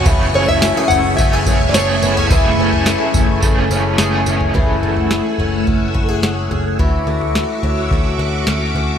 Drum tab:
TB |x---x-x-x-x-x-x-|x---x-x-x-x-x-x-|----------------|----------------|
SD |----o-------o---|----o-------o---|----o-------o---|----o-------o---|
FT |o--o--o----o---o|o--o--o--------o|o--o--o-o-----o-|o--o--o-o-----o-|
BD |o-------o-o-----|o-----o-o-------|o-------o-o-----|o-------o-------|